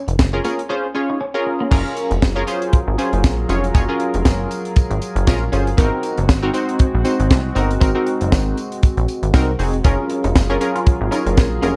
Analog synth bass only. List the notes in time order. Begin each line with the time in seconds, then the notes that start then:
0.08 F1
0.19 F#1
1.71 F#1
2.11 F1
2.23 F#1
2.87 G#1
3.13 F#1
3.24 A#1
3.49 F1
3.75 F#1
4.14 F1
4.25 F#1
4.90 G#1
5.15 F#1
5.27 A#1
5.53 G1
5.78 G#1
6.18 F#1
6.29 G#1
6.94 A#1
7.20 G#1
7.30 C2
7.56 G1
7.81 G#1
8.21 F#1
8.32 G#1
8.97 A#1
9.23 G#1
9.34 C2
9.59 F1
9.85 F#1
10.24 F1
10.36 F#1
11.01 G#1
11.26 F#1
11.38 A#1
11.62 F1